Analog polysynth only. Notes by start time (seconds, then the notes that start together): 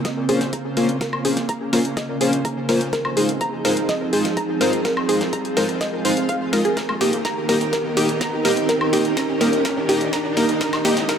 0.29 A#3 C#4 F4 C5
0.77 A#3 C#4 F4 C5
1.25 A#3 C#4 F4 C5
1.73 A#3 C#4 F4 C5
2.21 A#3 C#4 F4 C5
2.69 A#3 C#4 F4 C5
3.17 G#3 D#4 F4 C5
3.65 G#3 D#4 F4 C5
4.13 G#3 D#4 F4 C5
4.61 G#3 D#4 F4 C5
5.09 G#3 D#4 F4 C5
5.57 G#3 D#4 F4 C5
6.05 G#3 D#4 F4 F5
6.53 G#3 D#4 F4 D#5
7.01 A#3 D#4 G4 D#5
7.49 A#3 D#4 G4 D#5
7.97 A#3 D#4 G4 D#5
8.45 A#3 D#4 G4 D#5
8.93 A#3 D#4 G4 D#5
9.41 A#3 D#4 G4 D#5
9.89 A#3 D#4 G4 D#5
10.37 A#3 D#4 G4 D#5
10.85 A#3 D#4 G4 D#5